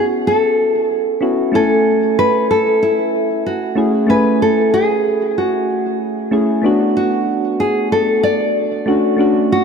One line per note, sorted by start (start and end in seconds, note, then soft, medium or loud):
0.00 1.21 B3 medium
0.00 1.21 C#4 medium
0.00 1.22 E4 medium
0.00 1.22 F#4 medium
0.27 0.88 A4 loud
0.88 1.18 G#4 loud
1.21 1.49 B3 medium
1.21 1.50 C#4 medium
1.21 1.50 E4 medium
1.21 1.50 F#4 medium
1.52 3.72 A3 medium
1.52 3.73 C#4 medium
1.52 3.73 E4 medium
1.52 2.18 A4 medium
1.52 3.74 G#5 medium
2.19 2.50 B4 loud
2.51 2.83 A4 medium
2.83 3.46 E4 medium
3.46 3.91 F#4 medium
3.75 4.04 A3 medium
3.75 4.05 C#4 medium
3.75 4.05 E4 medium
3.75 4.06 G#4 medium
4.07 6.27 A3 medium
4.07 6.28 C#4 medium
4.07 6.29 E4 medium
4.07 4.42 B4 medium
4.07 6.29 G#5 medium
4.42 4.73 A4 medium
4.74 5.39 G#4 medium
5.38 5.97 F#4 medium
6.31 6.60 A3 medium
6.31 6.60 C#4 medium
6.31 6.60 E4 medium
6.31 6.61 G#4 medium
6.62 8.83 A3 medium
6.62 8.83 B3 medium
6.62 8.84 D4 medium
6.66 8.85 F#4 loud
6.97 7.62 F#4 medium
7.60 7.92 G#4 medium
7.92 8.23 A4 loud
8.23 8.83 D5 loud
8.86 9.15 A3 medium
8.86 9.15 C#4 medium
8.86 9.16 D4 medium
8.86 9.16 F#4 loud
9.17 9.64 A3 medium
9.17 9.64 C#4 medium
9.17 9.64 D4 medium
9.17 9.64 F#4 loud
9.52 9.64 F#4 medium